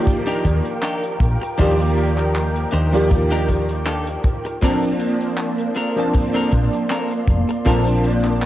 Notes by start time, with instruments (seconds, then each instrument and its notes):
Already playing: electric grand piano D#3 F3 A#3 G4 D5, string machine A#4 G5 D6
0.07 muted clean electric guitar stroke, kick, closed hi-hat
0.27 clean electric guitar D4 D#4 G4 A#4, closed hi-hat
0.45 fingered electric bass D#2, kick, closed hi-hat
0.65 muted clean electric guitar stroke, closed hi-hat
0.82 clean electric guitar D4 D#4 G4 A#4, clap, closed hi-hat
1.04 closed hi-hat
1.20 fingered electric bass A#1, muted clean electric guitar stroke, kick, closed hi-hat
1.41 muted clean electric guitar stroke, closed hi-hat
1.57 fingered electric bass D#2, electric grand piano D#3 F3 A#3 G4 D5, clean electric guitar D4 D#4 G4 C5, kick, closed hi-hat
1.80 closed hi-hat
1.96 muted clean electric guitar stroke, closed hi-hat
2.18 clap, closed hi-hat
2.35 clap, closed hi-hat
2.56 closed hi-hat
2.72 fingered electric bass D#2, clean electric guitar D4 D#4 G4 C5, closed hi-hat
2.92 electric grand piano D#3 F3 A#3 G4 D5, closed hi-hat
3.10 muted clean electric guitar stroke, kick, closed hi-hat
3.31 clean electric guitar D4 D#4 G4 A#4, closed hi-hat
3.49 kick, closed hi-hat
3.69 muted clean electric guitar stroke, closed hi-hat
3.86 clean electric guitar D4 D#4 G4 A4, clap, closed hi-hat
4.07 closed hi-hat
4.24 muted clean electric guitar stroke, kick, closed hi-hat
4.45 muted clean electric guitar stroke, closed hi-hat
4.61 electric grand piano F3 A#3 C4 D4 A5, string machine A#3 D5 A5 C6, clean electric guitar C4 D4 A4 A#4, kick, closed hi-hat
4.83 closed hi-hat
5.00 muted clean electric guitar stroke, closed hi-hat
5.21 closed hi-hat
5.38 clap, closed hi-hat
5.58 closed hi-hat
5.76 clean electric guitar C4 D4 A4 A#4, closed hi-hat
5.96 electric grand piano F3 A#3 C4 D4 A5, closed hi-hat
6.13 muted clean electric guitar stroke, kick, closed hi-hat
6.34 clean electric guitar C4 D4 A4 A#4, closed hi-hat
6.51 fingered electric bass A#1, kick, closed hi-hat
6.72 muted clean electric guitar stroke, closed hi-hat
6.90 clean electric guitar C4 D4 A4 A#4, clap, closed hi-hat
7.11 closed hi-hat
7.27 fingered electric bass F1, muted clean electric guitar stroke, kick, closed hi-hat
7.49 muted clean electric guitar stroke, closed hi-hat
7.65 fingered electric bass A#1, electric grand piano F3 A#3 C4 D4 A5, clean electric guitar C4 D4 A4 A#4, kick, closed hi-hat
7.87 closed hi-hat
8.04 muted clean electric guitar stroke, closed hi-hat
8.24 clap, closed hi-hat
8.42 clap, closed hi-hat